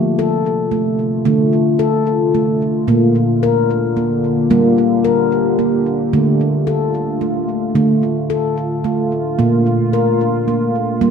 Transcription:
0.00 1.24 C3 medium
0.00 1.23 F3 medium
0.00 0.18 A3 medium
0.00 2.85 A3 medium
0.00 4.46 F4 medium
0.19 0.73 A4 medium
0.71 1.24 A3 medium
1.25 7.72 D3 medium
1.25 2.85 D3 medium
1.25 1.80 A3 medium
1.79 2.34 A4 medium
2.35 2.89 A3 medium
2.88 4.47 A#2 medium
2.88 3.42 A#3 medium
2.88 6.10 A#3 medium
3.43 3.97 A#4 medium
3.97 4.50 A#3 medium
4.50 6.10 G3 medium
4.50 5.05 A#3 medium
4.50 6.12 G4 medium
5.05 5.59 A#4 medium
5.59 6.13 A#3 medium
6.13 7.73 D3 medium
6.13 7.74 A3 medium
6.13 6.68 A3 medium
6.13 7.74 F4 medium
6.67 7.22 A4 medium
7.21 7.74 A3 soft
7.74 11.11 D3 medium
7.74 9.35 D3 medium
7.74 9.37 A3 medium
7.74 8.30 A3 medium
7.74 10.98 F4 medium
8.30 8.84 A4 medium
8.84 9.39 A3 medium
9.39 10.99 A#2 medium
9.39 9.93 A#3 medium
9.39 11.11 A#3 medium
9.93 10.48 A#4 medium
10.48 11.00 A#3 medium
11.01 11.11 G3 medium
11.01 11.11 A#3 medium

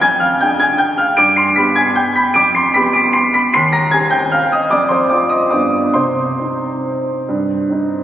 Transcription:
0.01 0.39 F2 medium
0.01 0.20 G#5 medium
0.01 0.21 G#6 loud
0.20 0.39 F5 medium
0.20 0.40 F6 medium
0.41 1.15 D4 soft
0.41 1.14 G#4 medium
0.41 0.60 G5 medium
0.41 0.60 G6 medium
0.60 0.79 G#5 medium
0.60 0.80 G#6 loud
0.78 0.98 G5 medium
0.78 0.98 G6 medium
0.98 1.16 F5 medium
0.98 1.17 F6 medium
1.17 1.54 G2 medium
1.17 1.35 D6 medium
1.17 1.36 D7 loud
1.36 1.55 C6 medium
1.36 1.56 C7 medium
1.56 2.31 B3 soft
1.56 2.31 G4 medium
1.56 1.75 B5 medium
1.56 1.76 B6 medium
1.76 1.95 G#5 medium
1.76 1.96 G#6 medium
1.96 2.15 G5 medium
1.96 2.15 G6 medium
2.16 2.34 B5 medium
2.16 2.34 B6 medium
2.34 2.72 F2 medium
2.34 2.53 D6 medium
2.34 2.53 D7 loud
2.55 2.73 C6 medium
2.55 2.74 C7 loud
2.74 3.50 B3 soft
2.74 3.51 G4 medium
2.74 2.93 B5 medium
2.74 2.94 B6 loud
2.93 3.13 D6 medium
2.93 3.13 D7 loud
3.13 3.32 C6 medium
3.13 3.33 C7 medium
3.34 3.52 B5 medium
3.34 3.53 B6 medium
3.54 3.92 D#2 medium
3.54 3.72 C6 medium
3.54 3.73 C7 loud
3.72 3.91 A#5 medium
3.72 3.92 A#6 medium
3.91 4.69 C4 soft
3.91 4.69 G4 soft
3.91 4.11 G#5 medium
3.91 4.12 G#6 medium
4.11 4.31 G5 medium
4.11 4.32 G6 medium
4.32 4.51 F5 medium
4.32 4.52 F6 medium
4.52 4.71 D#5 medium
4.52 4.72 D#6 medium
4.70 5.10 F2 medium
4.70 4.90 D5 medium
4.70 4.91 D6 loud
4.89 5.10 C5 medium
4.89 5.10 C6 medium
5.09 5.49 C4 soft
5.09 5.49 F4 soft
5.09 5.30 D5 medium
5.09 5.31 D6 medium
5.29 5.51 D#5 medium
5.29 5.52 D#6 medium
5.50 5.95 G2 medium
5.50 5.92 G3 soft
5.50 5.92 B3 soft
5.50 5.92 F4 soft
5.50 5.93 D5 medium
5.50 5.95 D6 medium
5.94 6.38 C3 medium
5.94 8.04 C5 medium
5.94 8.04 C6 medium
6.40 7.24 C4 soft
6.40 7.24 D#4 soft
7.28 7.69 G2 medium
7.70 8.04 C4 soft
7.70 8.04 D#4 soft

